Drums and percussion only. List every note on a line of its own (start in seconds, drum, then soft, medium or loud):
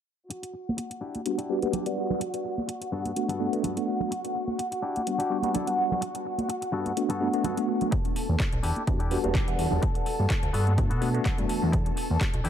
0.30 closed hi-hat medium
0.43 closed hi-hat medium
0.68 tambourine soft
0.68 high conga medium
0.78 closed hi-hat medium
0.78 tambourine medium
0.91 closed hi-hat medium
0.91 tambourine soft
1.02 tambourine medium
1.15 closed hi-hat soft
1.15 tambourine soft
1.15 high conga medium
1.26 closed hi-hat medium
1.26 tambourine medium
1.39 closed hi-hat medium
1.62 closed hi-hat soft
1.62 tambourine soft
1.62 high conga medium
1.73 closed hi-hat medium
1.73 tambourine soft
1.73 low conga loud
1.86 closed hi-hat medium
1.86 tambourine soft
1.98 tambourine medium
2.09 tambourine soft
2.09 low conga medium
2.20 closed hi-hat medium
2.20 tambourine soft
2.34 closed hi-hat soft
2.45 tambourine medium
2.58 tambourine soft
2.58 high conga medium
2.69 closed hi-hat medium
2.69 tambourine medium
2.81 closed hi-hat medium
2.81 tambourine soft
3.05 closed hi-hat soft
3.05 tambourine soft
3.05 high conga medium
3.16 closed hi-hat medium
3.29 closed hi-hat medium
3.53 closed hi-hat soft
3.64 closed hi-hat medium
3.64 tambourine medium
3.64 low conga medium
3.76 closed hi-hat medium
3.76 tambourine soft
3.87 tambourine medium
4.00 tambourine soft
4.00 low conga medium
4.11 closed hi-hat medium
4.11 tambourine medium
4.25 closed hi-hat soft
4.35 tambourine medium
4.47 tambourine soft
4.47 high conga medium
4.59 closed hi-hat medium
4.59 tambourine soft
4.72 closed hi-hat soft
4.72 tambourine soft
4.96 closed hi-hat soft
4.96 tambourine soft
4.96 high conga medium
5.07 closed hi-hat medium
5.07 tambourine soft
5.20 closed hi-hat soft
5.30 tambourine medium
5.42 closed hi-hat soft
5.42 tambourine soft
5.42 high conga medium
5.54 closed hi-hat medium
5.54 tambourine medium
5.54 low conga medium
5.67 closed hi-hat soft
5.67 tambourine soft
5.78 tambourine medium
5.91 tambourine soft
5.91 low conga loud
6.02 closed hi-hat medium
6.02 tambourine soft
6.15 closed hi-hat soft
6.15 tambourine soft
6.25 tambourine medium
6.38 closed hi-hat soft
6.38 tambourine soft
6.38 high conga loud
6.49 closed hi-hat medium
6.49 tambourine soft
6.62 closed hi-hat soft
6.62 tambourine soft
6.73 tambourine medium
6.86 closed hi-hat soft
6.86 tambourine soft
6.86 high conga medium
6.97 closed hi-hat medium
7.10 closed hi-hat soft
7.20 tambourine medium
7.33 closed hi-hat soft
7.44 closed hi-hat medium
7.44 tambourine soft
7.44 low conga medium
7.57 closed hi-hat soft
7.57 tambourine soft
7.68 tambourine medium
7.81 closed hi-hat soft
7.81 tambourine soft
7.81 low conga medium
7.92 kick loud
7.92 closed hi-hat medium
8.05 closed hi-hat soft
8.16 open hi-hat loud
8.16 tambourine medium
8.29 tambourine soft
8.29 high conga medium
8.40 kick loud
8.40 clap loud
8.40 closed hi-hat medium
8.52 closed hi-hat soft
8.52 tambourine soft
8.63 open hi-hat loud
8.76 closed hi-hat soft
8.76 tambourine soft
8.76 high conga medium
8.87 kick loud
8.87 closed hi-hat medium
9.00 closed hi-hat soft
9.00 tambourine soft
9.11 open hi-hat loud
9.24 closed hi-hat soft
9.24 tambourine soft
9.24 high conga medium
9.34 kick loud
9.34 clap loud
9.34 closed hi-hat medium
9.34 tambourine soft
9.34 low conga medium
9.48 closed hi-hat soft
9.59 open hi-hat loud
9.71 tambourine soft
9.71 low conga medium
9.83 kick loud
9.83 closed hi-hat medium
9.83 tambourine medium
9.95 closed hi-hat soft
10.06 open hi-hat loud
10.06 tambourine medium
10.19 tambourine soft
10.19 high conga medium
10.30 kick loud
10.30 clap loud
10.30 closed hi-hat medium
10.43 closed hi-hat medium
10.43 tambourine soft
10.54 open hi-hat loud
10.67 closed hi-hat soft
10.67 tambourine soft
10.67 high conga medium
10.78 kick loud
10.78 closed hi-hat medium
10.91 closed hi-hat medium
11.02 open hi-hat medium
11.14 closed hi-hat soft
11.14 tambourine soft
11.25 kick loud
11.25 clap loud
11.25 closed hi-hat medium
11.25 tambourine soft
11.25 low conga medium
11.38 closed hi-hat medium
11.49 open hi-hat loud
11.49 tambourine medium
11.62 tambourine soft
11.62 low conga medium
11.73 kick loud
11.73 closed hi-hat medium
11.86 closed hi-hat medium
11.86 tambourine soft
11.97 open hi-hat loud
11.97 tambourine medium
12.10 tambourine soft
12.10 high conga medium
12.21 kick loud
12.21 clap loud
12.21 closed hi-hat medium
12.34 closed hi-hat medium
12.45 open hi-hat loud
12.45 tambourine medium